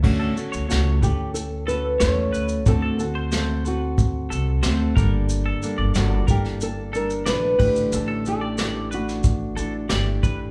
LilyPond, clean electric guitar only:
\new Staff \with { instrumentName = "Clean electric guitar" } { \time 4/4 \key d \major \tempo 4 = 91 r16 a'16 r16 cis''16 cis''8 b'16 r8. a'16 r16 cis''16 r16 b'16 r16 | r16 a'16 r16 c''16 c''8 b'16 r8. a'16 r16 c''16 r16 bes'16 r16 | r16 a'16 r16 d''16 d''8 bes'16 r8. a'16 r16 d''16 r16 b'16 r16 | r16 a'16 r16 d''16 d''8 b'16 r8. a'16 r16 d''16 r16 b'16 r16 | }